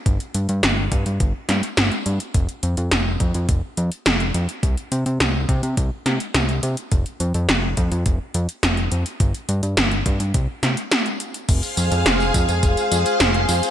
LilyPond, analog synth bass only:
\new Staff \with { instrumentName = "Analog synth bass" } { \clef bass \time 4/4 \key f \minor \tempo 4 = 105 g,,16 r16 g,16 g,16 g,,8 g,16 g,16 g,,16 r16 g,16 r16 g,,16 r16 g,16 r16 | f,,16 r16 f,16 f,16 f,,8 f,16 f,16 f,,16 r16 f,16 r16 f,,8 f,16 r16 | c,16 r16 c16 c16 c,8 c16 c16 c,16 r16 c16 r16 c,8 c16 r16 | f,,16 r16 f,16 f,16 f,,8 f,16 f,16 f,,16 r16 f,16 r16 f,,8 f,16 r16 |
g,,16 r16 g,16 g,16 g,,8 g,16 g,16 c,16 r16 c16 r4 r16 | f,,16 r16 f,16 f,16 f,,8 f,16 f,16 f,,16 r16 f,16 r16 f,,8 f,16 r16 | }